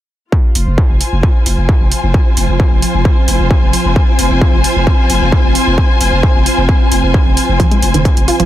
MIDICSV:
0, 0, Header, 1, 6, 480
1, 0, Start_track
1, 0, Key_signature, -4, "minor"
1, 0, Tempo, 454545
1, 343, Time_signature, 4, 2, 24, 8
1, 8928, End_track
2, 0, Start_track
2, 0, Title_t, "String section"
2, 0, Program_c, 0, 48
2, 343, Note_on_c, 0, 65, 76
2, 627, Note_on_c, 0, 72, 81
2, 905, Note_on_c, 0, 80, 85
2, 8928, Note_off_c, 0, 65, 0
2, 8928, Note_off_c, 0, 72, 0
2, 8928, Note_off_c, 0, 80, 0
2, 8928, End_track
3, 0, Start_track
3, 0, Title_t, "Ambient pad"
3, 0, Program_c, 1, 92
3, 343, Note_on_c, 1, 53, 77
3, 343, Note_on_c, 1, 60, 75
3, 8928, Note_off_c, 1, 53, 0
3, 8928, Note_off_c, 1, 60, 0
3, 8928, End_track
4, 0, Start_track
4, 0, Title_t, "Synth arpeggio sound"
4, 0, Program_c, 2, 84
4, 8023, Note_on_c, 2, 53, 85
4, 8100, Note_off_c, 2, 53, 0
4, 8147, Note_on_c, 2, 56, 74
4, 8219, Note_off_c, 2, 56, 0
4, 8387, Note_on_c, 2, 51, 72
4, 8435, Note_off_c, 2, 51, 0
4, 8743, Note_on_c, 2, 65, 96
4, 8795, Note_off_c, 2, 65, 0
4, 8868, Note_on_c, 2, 53, 102
4, 8896, Note_off_c, 2, 53, 0
4, 8928, End_track
5, 0, Start_track
5, 0, Title_t, "808-style bass"
5, 0, Program_c, 3, 38
5, 582, Note_on_c, 3, 29, 94
5, 700, Note_off_c, 3, 29, 0
5, 706, Note_on_c, 3, 29, 78
5, 820, Note_off_c, 3, 29, 0
5, 945, Note_on_c, 3, 29, 73
5, 1060, Note_off_c, 3, 29, 0
5, 1186, Note_on_c, 3, 29, 81
5, 1300, Note_off_c, 3, 29, 0
5, 1542, Note_on_c, 3, 29, 98
5, 1659, Note_off_c, 3, 29, 0
5, 1665, Note_on_c, 3, 29, 80
5, 1780, Note_off_c, 3, 29, 0
5, 1906, Note_on_c, 3, 29, 76
5, 2020, Note_off_c, 3, 29, 0
5, 2146, Note_on_c, 3, 29, 82
5, 2260, Note_off_c, 3, 29, 0
5, 2502, Note_on_c, 3, 29, 96
5, 2619, Note_off_c, 3, 29, 0
5, 2626, Note_on_c, 3, 29, 78
5, 2740, Note_off_c, 3, 29, 0
5, 2866, Note_on_c, 3, 29, 76
5, 2980, Note_off_c, 3, 29, 0
5, 3106, Note_on_c, 3, 29, 81
5, 3220, Note_off_c, 3, 29, 0
5, 3462, Note_on_c, 3, 29, 98
5, 3579, Note_off_c, 3, 29, 0
5, 3585, Note_on_c, 3, 29, 81
5, 3700, Note_off_c, 3, 29, 0
5, 3825, Note_on_c, 3, 29, 76
5, 3940, Note_off_c, 3, 29, 0
5, 4066, Note_on_c, 3, 29, 82
5, 4180, Note_off_c, 3, 29, 0
5, 4421, Note_on_c, 3, 29, 97
5, 4540, Note_off_c, 3, 29, 0
5, 4546, Note_on_c, 3, 29, 78
5, 4660, Note_off_c, 3, 29, 0
5, 4786, Note_on_c, 3, 29, 75
5, 4900, Note_off_c, 3, 29, 0
5, 5025, Note_on_c, 3, 29, 82
5, 5140, Note_off_c, 3, 29, 0
5, 5381, Note_on_c, 3, 29, 102
5, 5499, Note_off_c, 3, 29, 0
5, 5505, Note_on_c, 3, 29, 80
5, 5620, Note_off_c, 3, 29, 0
5, 5744, Note_on_c, 3, 29, 78
5, 5860, Note_off_c, 3, 29, 0
5, 5985, Note_on_c, 3, 29, 84
5, 6100, Note_off_c, 3, 29, 0
5, 6341, Note_on_c, 3, 29, 98
5, 6459, Note_off_c, 3, 29, 0
5, 6465, Note_on_c, 3, 29, 80
5, 6580, Note_off_c, 3, 29, 0
5, 6706, Note_on_c, 3, 29, 75
5, 6820, Note_off_c, 3, 29, 0
5, 6945, Note_on_c, 3, 29, 82
5, 7060, Note_off_c, 3, 29, 0
5, 7302, Note_on_c, 3, 29, 101
5, 7420, Note_off_c, 3, 29, 0
5, 7426, Note_on_c, 3, 29, 79
5, 7540, Note_off_c, 3, 29, 0
5, 7665, Note_on_c, 3, 29, 78
5, 7780, Note_off_c, 3, 29, 0
5, 7906, Note_on_c, 3, 29, 81
5, 8020, Note_off_c, 3, 29, 0
5, 8263, Note_on_c, 3, 29, 95
5, 8380, Note_off_c, 3, 29, 0
5, 8387, Note_on_c, 3, 29, 81
5, 8501, Note_off_c, 3, 29, 0
5, 8627, Note_on_c, 3, 29, 76
5, 8741, Note_off_c, 3, 29, 0
5, 8867, Note_on_c, 3, 29, 80
5, 8928, Note_off_c, 3, 29, 0
5, 8928, End_track
6, 0, Start_track
6, 0, Title_t, "Drums"
6, 342, Note_on_c, 9, 36, 112
6, 448, Note_off_c, 9, 36, 0
6, 583, Note_on_c, 9, 46, 101
6, 689, Note_off_c, 9, 46, 0
6, 822, Note_on_c, 9, 36, 114
6, 928, Note_off_c, 9, 36, 0
6, 1062, Note_on_c, 9, 46, 100
6, 1168, Note_off_c, 9, 46, 0
6, 1302, Note_on_c, 9, 36, 115
6, 1408, Note_off_c, 9, 36, 0
6, 1543, Note_on_c, 9, 46, 100
6, 1648, Note_off_c, 9, 46, 0
6, 1782, Note_on_c, 9, 36, 115
6, 1888, Note_off_c, 9, 36, 0
6, 2023, Note_on_c, 9, 46, 102
6, 2128, Note_off_c, 9, 46, 0
6, 2262, Note_on_c, 9, 36, 115
6, 2368, Note_off_c, 9, 36, 0
6, 2503, Note_on_c, 9, 46, 107
6, 2608, Note_off_c, 9, 46, 0
6, 2742, Note_on_c, 9, 36, 117
6, 2848, Note_off_c, 9, 36, 0
6, 2982, Note_on_c, 9, 46, 103
6, 3088, Note_off_c, 9, 46, 0
6, 3222, Note_on_c, 9, 36, 121
6, 3328, Note_off_c, 9, 36, 0
6, 3463, Note_on_c, 9, 46, 106
6, 3568, Note_off_c, 9, 46, 0
6, 3702, Note_on_c, 9, 36, 120
6, 3808, Note_off_c, 9, 36, 0
6, 3943, Note_on_c, 9, 46, 105
6, 4048, Note_off_c, 9, 46, 0
6, 4182, Note_on_c, 9, 36, 116
6, 4288, Note_off_c, 9, 36, 0
6, 4422, Note_on_c, 9, 46, 112
6, 4528, Note_off_c, 9, 46, 0
6, 4662, Note_on_c, 9, 36, 121
6, 4768, Note_off_c, 9, 36, 0
6, 4902, Note_on_c, 9, 46, 108
6, 5008, Note_off_c, 9, 46, 0
6, 5142, Note_on_c, 9, 36, 120
6, 5247, Note_off_c, 9, 36, 0
6, 5382, Note_on_c, 9, 46, 106
6, 5488, Note_off_c, 9, 46, 0
6, 5622, Note_on_c, 9, 36, 120
6, 5727, Note_off_c, 9, 36, 0
6, 5862, Note_on_c, 9, 46, 108
6, 5968, Note_off_c, 9, 46, 0
6, 6102, Note_on_c, 9, 36, 114
6, 6207, Note_off_c, 9, 36, 0
6, 6342, Note_on_c, 9, 46, 110
6, 6448, Note_off_c, 9, 46, 0
6, 6582, Note_on_c, 9, 36, 117
6, 6687, Note_off_c, 9, 36, 0
6, 6823, Note_on_c, 9, 46, 107
6, 6928, Note_off_c, 9, 46, 0
6, 7062, Note_on_c, 9, 36, 117
6, 7168, Note_off_c, 9, 36, 0
6, 7303, Note_on_c, 9, 46, 105
6, 7409, Note_off_c, 9, 46, 0
6, 7543, Note_on_c, 9, 36, 118
6, 7648, Note_off_c, 9, 36, 0
6, 7783, Note_on_c, 9, 46, 107
6, 7889, Note_off_c, 9, 46, 0
6, 8023, Note_on_c, 9, 36, 115
6, 8023, Note_on_c, 9, 42, 59
6, 8128, Note_off_c, 9, 36, 0
6, 8129, Note_off_c, 9, 42, 0
6, 8147, Note_on_c, 9, 42, 60
6, 8252, Note_off_c, 9, 42, 0
6, 8263, Note_on_c, 9, 46, 102
6, 8369, Note_off_c, 9, 46, 0
6, 8387, Note_on_c, 9, 42, 60
6, 8493, Note_off_c, 9, 42, 0
6, 8503, Note_on_c, 9, 36, 113
6, 8503, Note_on_c, 9, 42, 61
6, 8608, Note_off_c, 9, 36, 0
6, 8609, Note_off_c, 9, 42, 0
6, 8628, Note_on_c, 9, 42, 63
6, 8733, Note_off_c, 9, 42, 0
6, 8743, Note_on_c, 9, 46, 101
6, 8849, Note_off_c, 9, 46, 0
6, 8868, Note_on_c, 9, 42, 61
6, 8928, Note_off_c, 9, 42, 0
6, 8928, End_track
0, 0, End_of_file